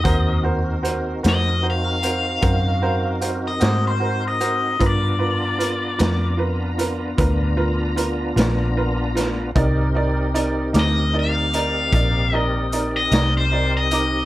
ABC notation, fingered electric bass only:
X:1
M:12/8
L:1/8
Q:3/8=51
K:Cm
V:1 name="Fingered electric bass" clef=bass
E,,3 F,,3 _G,,3 A,,3 | G,,3 F,,3 D,,3 ^A,,,3 | C,,3 D,,3 B,,,3 C,,3 |]